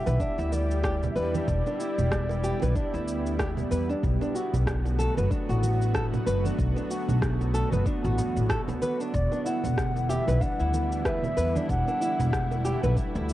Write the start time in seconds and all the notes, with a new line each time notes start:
Already playing: D3 G3 B3 E4 G4 E5
0.06 B1 B4, high conga, shaker
0.20 D4, kick, shaker
0.38 D2 E4, shaker
0.52 D5, high bongo, high conga, shaker
0.71 shaker
0.83 G4, kick, cross-stick, shaker
1.03 high bongo, low conga, shaker
1.10 E5
1.16 E2 B4 D5, shaker
1.34 D4, high conga, shaker
1.48 E1, kick, shaker
1.66 D4, high bongo, shaker
1.80 E4, shaker
1.98 E1, low conga, shaker
2.12 kick, cross-stick, shaker
2.29 high bongo, shaker
2.44 G4, shaker
2.62 B1 B4, high conga, low conga, shaker
2.75 D4, kick, shaker
2.94 D2 E4, shaker
3.08 shaker
3.26 shaker
3.39 G4, kick, cross-stick, high bongo, shaker
3.57 high bongo, low conga, shaker
3.71 E2 B4, high conga, shaker
3.89 D4, shaker
4.03 B1 F#3 A3 F#4, kick, shaker
4.21 D4, high bongo, shaker
4.35 F#4, shaker
4.54 B1, low conga, shaker
4.67 kick, cross-stick, shaker
4.85 high bongo, shaker
4.99 A4, high conga, shaker
5.17 F#1 B4, high conga, shaker
5.31 D4, kick, shaker
5.49 A1 F#4, shaker
5.63 high bongo, high conga, shaker
5.82 shaker
5.94 A4, kick, cross-stick, shaker
6.13 high bongo, low conga, shaker
6.26 F#1 B4, shaker
6.45 D4, high conga, shaker
6.59 B1, kick, shaker
6.77 D4, high bongo, shaker
6.90 F#4, shaker
7.09 B1, low conga, shaker
7.22 kick, cross-stick, shaker
7.41 high bongo, shaker
7.54 A4, shaker
7.72 F#1 B4, high conga, low conga, shaker
7.86 D4, kick, shaker
8.04 A1 F#4, shaker
8.18 E2, shaker
8.37 A1, shaker
8.49 A4, kick, cross-stick, high bongo, shaker
8.68 D2, high bongo, low conga, shaker
8.82 B4, high conga, shaker
9.00 D4, shaker
9.14 E1 E3 G3 E4 D5, kick, shaker
9.32 D4, high bongo, shaker
9.45 E4 F#5, shaker
9.64 E1, low conga, shaker
9.78 kick, cross-stick, shaker
9.96 high bongo, shaker
10.09 G4 E5, high conga, shaker
10.27 B1 B4, high conga, shaker
10.41 D4 F#5, kick, shaker
10.60 D2 E4, shaker
10.73 high bongo, high conga, shaker
10.92 shaker
10.99 F#5
11.05 B4 E5, kick, cross-stick, shaker
11.24 high bongo, low conga, shaker
11.37 E2 B4, shaker
11.55 D4, high conga, shaker
11.69 E1 A3 F#5, kick, shaker
11.87 D4, high bongo, shaker
12.01 E4, shaker
12.19 E1, low conga, shaker
12.33 kick, cross-stick, shaker
12.51 high bongo, shaker
12.65 G4, shaker
12.83 B1 B4, high conga, low conga, shaker
12.97 D4, kick, shaker
13.15 D2 E4, shaker
13.29 shaker